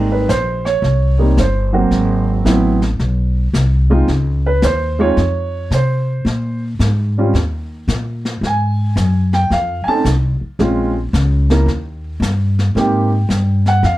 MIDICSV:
0, 0, Header, 1, 5, 480
1, 0, Start_track
1, 0, Key_signature, -4, "major"
1, 0, Tempo, 542005
1, 1698, Time_signature, 4, 2, 24, 8
1, 12380, End_track
2, 0, Start_track
2, 0, Title_t, "Grand piano"
2, 0, Program_c, 0, 0
2, 0, Note_on_c, 0, 44, 69
2, 0, Note_on_c, 0, 55, 61
2, 0, Note_on_c, 0, 58, 65
2, 0, Note_on_c, 0, 60, 64
2, 0, Note_on_c, 0, 63, 77
2, 104, Note_on_c, 0, 71, 73
2, 220, Note_off_c, 0, 44, 0
2, 220, Note_off_c, 0, 55, 0
2, 221, Note_off_c, 0, 58, 0
2, 222, Note_off_c, 0, 60, 0
2, 224, Note_off_c, 0, 63, 0
2, 253, Note_off_c, 0, 71, 0
2, 258, Note_on_c, 0, 72, 82
2, 570, Note_off_c, 0, 72, 0
2, 577, Note_on_c, 0, 73, 88
2, 1046, Note_on_c, 0, 55, 55
2, 1048, Note_on_c, 0, 60, 51
2, 1051, Note_on_c, 0, 58, 54
2, 1057, Note_on_c, 0, 63, 62
2, 1181, Note_off_c, 0, 73, 0
2, 1194, Note_off_c, 0, 55, 0
2, 1195, Note_off_c, 0, 60, 0
2, 1197, Note_off_c, 0, 58, 0
2, 1200, Note_off_c, 0, 63, 0
2, 1235, Note_on_c, 0, 72, 72
2, 1528, Note_on_c, 0, 54, 63
2, 1536, Note_on_c, 0, 60, 62
2, 1537, Note_on_c, 0, 58, 62
2, 1538, Note_on_c, 0, 66, 74
2, 1995, Note_off_c, 0, 72, 0
2, 2142, Note_off_c, 0, 54, 0
2, 2146, Note_off_c, 0, 58, 0
2, 2146, Note_off_c, 0, 60, 0
2, 2147, Note_off_c, 0, 66, 0
2, 2165, Note_on_c, 0, 54, 62
2, 2165, Note_on_c, 0, 59, 59
2, 2171, Note_on_c, 0, 60, 61
2, 2176, Note_on_c, 0, 64, 71
2, 2463, Note_off_c, 0, 54, 0
2, 2463, Note_off_c, 0, 59, 0
2, 2466, Note_off_c, 0, 60, 0
2, 2469, Note_off_c, 0, 64, 0
2, 3454, Note_on_c, 0, 56, 68
2, 3459, Note_on_c, 0, 60, 62
2, 3459, Note_on_c, 0, 63, 62
2, 3462, Note_on_c, 0, 65, 76
2, 3601, Note_off_c, 0, 56, 0
2, 3604, Note_off_c, 0, 60, 0
2, 3604, Note_off_c, 0, 63, 0
2, 3605, Note_off_c, 0, 65, 0
2, 3954, Note_on_c, 0, 71, 82
2, 4103, Note_off_c, 0, 71, 0
2, 4109, Note_on_c, 0, 72, 80
2, 4418, Note_on_c, 0, 56, 66
2, 4420, Note_off_c, 0, 72, 0
2, 4421, Note_on_c, 0, 63, 64
2, 4424, Note_on_c, 0, 60, 65
2, 4426, Note_on_c, 0, 65, 80
2, 4434, Note_on_c, 0, 73, 93
2, 4564, Note_off_c, 0, 56, 0
2, 4566, Note_off_c, 0, 63, 0
2, 4567, Note_off_c, 0, 60, 0
2, 4569, Note_off_c, 0, 65, 0
2, 5033, Note_off_c, 0, 73, 0
2, 5082, Note_on_c, 0, 72, 70
2, 5841, Note_off_c, 0, 72, 0
2, 6356, Note_on_c, 0, 55, 63
2, 6361, Note_on_c, 0, 61, 60
2, 6362, Note_on_c, 0, 60, 55
2, 6367, Note_on_c, 0, 65, 68
2, 6494, Note_off_c, 0, 55, 0
2, 6497, Note_off_c, 0, 60, 0
2, 6497, Note_off_c, 0, 61, 0
2, 6500, Note_off_c, 0, 65, 0
2, 7497, Note_on_c, 0, 80, 76
2, 8248, Note_off_c, 0, 80, 0
2, 8269, Note_on_c, 0, 79, 94
2, 8421, Note_off_c, 0, 79, 0
2, 8432, Note_on_c, 0, 77, 77
2, 8712, Note_on_c, 0, 80, 68
2, 8735, Note_off_c, 0, 80, 0
2, 8741, Note_off_c, 0, 77, 0
2, 8749, Note_on_c, 0, 57, 63
2, 8750, Note_on_c, 0, 60, 53
2, 8750, Note_on_c, 0, 81, 96
2, 8753, Note_on_c, 0, 61, 52
2, 8758, Note_on_c, 0, 63, 68
2, 8890, Note_off_c, 0, 57, 0
2, 8890, Note_off_c, 0, 60, 0
2, 8892, Note_off_c, 0, 61, 0
2, 8894, Note_off_c, 0, 63, 0
2, 8902, Note_off_c, 0, 81, 0
2, 9381, Note_on_c, 0, 56, 64
2, 9386, Note_on_c, 0, 60, 60
2, 9391, Note_on_c, 0, 61, 63
2, 9392, Note_on_c, 0, 65, 77
2, 9672, Note_off_c, 0, 56, 0
2, 9675, Note_off_c, 0, 60, 0
2, 9677, Note_off_c, 0, 61, 0
2, 9678, Note_off_c, 0, 65, 0
2, 10185, Note_on_c, 0, 58, 59
2, 10190, Note_on_c, 0, 61, 54
2, 10197, Note_on_c, 0, 64, 53
2, 10197, Note_on_c, 0, 70, 61
2, 10326, Note_off_c, 0, 58, 0
2, 10329, Note_off_c, 0, 61, 0
2, 10332, Note_off_c, 0, 64, 0
2, 10333, Note_off_c, 0, 70, 0
2, 11299, Note_on_c, 0, 60, 59
2, 11300, Note_on_c, 0, 58, 66
2, 11307, Note_on_c, 0, 63, 59
2, 11310, Note_on_c, 0, 67, 73
2, 11329, Note_on_c, 0, 79, 74
2, 11589, Note_off_c, 0, 60, 0
2, 11590, Note_off_c, 0, 58, 0
2, 11593, Note_off_c, 0, 63, 0
2, 11595, Note_off_c, 0, 67, 0
2, 12079, Note_off_c, 0, 79, 0
2, 12114, Note_on_c, 0, 78, 91
2, 12260, Note_off_c, 0, 78, 0
2, 12264, Note_on_c, 0, 77, 80
2, 12380, Note_off_c, 0, 77, 0
2, 12380, End_track
3, 0, Start_track
3, 0, Title_t, "Upright bass"
3, 0, Program_c, 1, 32
3, 0, Note_on_c, 1, 32, 76
3, 239, Note_off_c, 1, 32, 0
3, 256, Note_on_c, 1, 34, 78
3, 722, Note_off_c, 1, 34, 0
3, 727, Note_on_c, 1, 36, 77
3, 1198, Note_off_c, 1, 36, 0
3, 1215, Note_on_c, 1, 31, 86
3, 1683, Note_off_c, 1, 31, 0
3, 1689, Note_on_c, 1, 32, 74
3, 2160, Note_off_c, 1, 32, 0
3, 2172, Note_on_c, 1, 33, 84
3, 2642, Note_off_c, 1, 33, 0
3, 2652, Note_on_c, 1, 35, 83
3, 3123, Note_off_c, 1, 35, 0
3, 3130, Note_on_c, 1, 36, 86
3, 3602, Note_off_c, 1, 36, 0
3, 3611, Note_on_c, 1, 37, 76
3, 4083, Note_off_c, 1, 37, 0
3, 4095, Note_on_c, 1, 39, 90
3, 4566, Note_off_c, 1, 39, 0
3, 4577, Note_on_c, 1, 41, 77
3, 5047, Note_off_c, 1, 41, 0
3, 5053, Note_on_c, 1, 48, 81
3, 5525, Note_off_c, 1, 48, 0
3, 5533, Note_on_c, 1, 46, 81
3, 6005, Note_off_c, 1, 46, 0
3, 6016, Note_on_c, 1, 44, 81
3, 6487, Note_off_c, 1, 44, 0
3, 6496, Note_on_c, 1, 39, 77
3, 6967, Note_off_c, 1, 39, 0
3, 6975, Note_on_c, 1, 46, 86
3, 7446, Note_off_c, 1, 46, 0
3, 7451, Note_on_c, 1, 44, 74
3, 7923, Note_off_c, 1, 44, 0
3, 7933, Note_on_c, 1, 42, 81
3, 8404, Note_off_c, 1, 42, 0
3, 8416, Note_on_c, 1, 41, 80
3, 8720, Note_off_c, 1, 41, 0
3, 8896, Note_on_c, 1, 36, 89
3, 9199, Note_off_c, 1, 36, 0
3, 9378, Note_on_c, 1, 34, 74
3, 9846, Note_off_c, 1, 34, 0
3, 9858, Note_on_c, 1, 37, 89
3, 10321, Note_off_c, 1, 37, 0
3, 10326, Note_on_c, 1, 39, 81
3, 10798, Note_off_c, 1, 39, 0
3, 10803, Note_on_c, 1, 43, 87
3, 11276, Note_off_c, 1, 43, 0
3, 11292, Note_on_c, 1, 44, 77
3, 11760, Note_off_c, 1, 44, 0
3, 11767, Note_on_c, 1, 43, 85
3, 12237, Note_off_c, 1, 43, 0
3, 12247, Note_on_c, 1, 41, 87
3, 12380, Note_off_c, 1, 41, 0
3, 12380, End_track
4, 0, Start_track
4, 0, Title_t, "Muted upright bass strokes"
4, 8736, Note_on_c, 9, 29, 39
4, 8825, Note_off_c, 9, 29, 0
4, 9221, Note_on_c, 9, 29, 34
4, 9309, Note_off_c, 9, 29, 0
4, 12380, End_track
5, 0, Start_track
5, 0, Title_t, "Drums"
5, 258, Note_on_c, 9, 38, 57
5, 260, Note_on_c, 9, 44, 50
5, 346, Note_off_c, 9, 38, 0
5, 348, Note_off_c, 9, 44, 0
5, 585, Note_on_c, 9, 38, 37
5, 674, Note_off_c, 9, 38, 0
5, 742, Note_on_c, 9, 25, 44
5, 742, Note_on_c, 9, 38, 38
5, 831, Note_off_c, 9, 38, 0
5, 1217, Note_on_c, 9, 38, 58
5, 1218, Note_on_c, 9, 44, 54
5, 1305, Note_off_c, 9, 38, 0
5, 1307, Note_off_c, 9, 44, 0
5, 1695, Note_off_c, 9, 25, 0
5, 1695, Note_on_c, 9, 25, 42
5, 1695, Note_on_c, 9, 38, 40
5, 1784, Note_off_c, 9, 38, 0
5, 2177, Note_on_c, 9, 38, 62
5, 2179, Note_on_c, 9, 44, 49
5, 2266, Note_off_c, 9, 38, 0
5, 2267, Note_off_c, 9, 44, 0
5, 2497, Note_on_c, 9, 38, 39
5, 2586, Note_off_c, 9, 38, 0
5, 2653, Note_off_c, 9, 25, 0
5, 2653, Note_on_c, 9, 25, 42
5, 2653, Note_on_c, 9, 38, 40
5, 2741, Note_off_c, 9, 38, 0
5, 3136, Note_on_c, 9, 38, 59
5, 3138, Note_on_c, 9, 44, 57
5, 3225, Note_off_c, 9, 38, 0
5, 3226, Note_off_c, 9, 44, 0
5, 3615, Note_off_c, 9, 25, 0
5, 3615, Note_on_c, 9, 25, 50
5, 3615, Note_on_c, 9, 38, 42
5, 3704, Note_off_c, 9, 38, 0
5, 4094, Note_on_c, 9, 38, 59
5, 4095, Note_on_c, 9, 44, 53
5, 4182, Note_off_c, 9, 38, 0
5, 4184, Note_off_c, 9, 44, 0
5, 4579, Note_off_c, 9, 25, 0
5, 4579, Note_on_c, 9, 25, 40
5, 4579, Note_on_c, 9, 38, 38
5, 4667, Note_off_c, 9, 38, 0
5, 5061, Note_on_c, 9, 38, 59
5, 5063, Note_on_c, 9, 44, 58
5, 5150, Note_off_c, 9, 38, 0
5, 5151, Note_off_c, 9, 44, 0
5, 5546, Note_off_c, 9, 25, 0
5, 5546, Note_on_c, 9, 25, 45
5, 5546, Note_on_c, 9, 38, 42
5, 5635, Note_off_c, 9, 38, 0
5, 6024, Note_on_c, 9, 38, 59
5, 6025, Note_on_c, 9, 44, 56
5, 6112, Note_off_c, 9, 38, 0
5, 6114, Note_off_c, 9, 44, 0
5, 6506, Note_off_c, 9, 25, 0
5, 6506, Note_on_c, 9, 25, 43
5, 6506, Note_on_c, 9, 38, 42
5, 6595, Note_off_c, 9, 38, 0
5, 6983, Note_on_c, 9, 38, 60
5, 6985, Note_on_c, 9, 44, 57
5, 7071, Note_off_c, 9, 38, 0
5, 7073, Note_off_c, 9, 44, 0
5, 7307, Note_on_c, 9, 38, 36
5, 7396, Note_off_c, 9, 38, 0
5, 7469, Note_off_c, 9, 25, 0
5, 7469, Note_on_c, 9, 25, 42
5, 7469, Note_on_c, 9, 38, 44
5, 7557, Note_off_c, 9, 38, 0
5, 7941, Note_on_c, 9, 38, 61
5, 7943, Note_on_c, 9, 44, 52
5, 8030, Note_off_c, 9, 38, 0
5, 8031, Note_off_c, 9, 44, 0
5, 8263, Note_on_c, 9, 38, 39
5, 8352, Note_off_c, 9, 38, 0
5, 8426, Note_off_c, 9, 25, 0
5, 8426, Note_on_c, 9, 25, 41
5, 8426, Note_on_c, 9, 38, 41
5, 8514, Note_off_c, 9, 38, 0
5, 8904, Note_on_c, 9, 38, 65
5, 8905, Note_on_c, 9, 44, 58
5, 8992, Note_off_c, 9, 38, 0
5, 8994, Note_off_c, 9, 44, 0
5, 9381, Note_off_c, 9, 25, 0
5, 9381, Note_on_c, 9, 25, 51
5, 9381, Note_on_c, 9, 38, 43
5, 9469, Note_off_c, 9, 38, 0
5, 9865, Note_on_c, 9, 38, 65
5, 9867, Note_on_c, 9, 44, 56
5, 9953, Note_off_c, 9, 38, 0
5, 9955, Note_off_c, 9, 44, 0
5, 10185, Note_on_c, 9, 38, 41
5, 10273, Note_off_c, 9, 38, 0
5, 10345, Note_off_c, 9, 25, 0
5, 10345, Note_on_c, 9, 25, 50
5, 10345, Note_on_c, 9, 38, 42
5, 10434, Note_off_c, 9, 38, 0
5, 10824, Note_on_c, 9, 38, 61
5, 10826, Note_on_c, 9, 44, 56
5, 10913, Note_off_c, 9, 38, 0
5, 10914, Note_off_c, 9, 44, 0
5, 11148, Note_on_c, 9, 38, 41
5, 11236, Note_off_c, 9, 38, 0
5, 11306, Note_off_c, 9, 25, 0
5, 11306, Note_on_c, 9, 25, 50
5, 11306, Note_on_c, 9, 38, 44
5, 11394, Note_off_c, 9, 38, 0
5, 11778, Note_on_c, 9, 38, 64
5, 11780, Note_on_c, 9, 44, 57
5, 11867, Note_off_c, 9, 38, 0
5, 11868, Note_off_c, 9, 44, 0
5, 12097, Note_on_c, 9, 38, 42
5, 12185, Note_off_c, 9, 38, 0
5, 12256, Note_off_c, 9, 25, 0
5, 12256, Note_on_c, 9, 25, 50
5, 12256, Note_on_c, 9, 38, 45
5, 12345, Note_off_c, 9, 38, 0
5, 12380, Note_off_c, 9, 25, 0
5, 12380, End_track
0, 0, End_of_file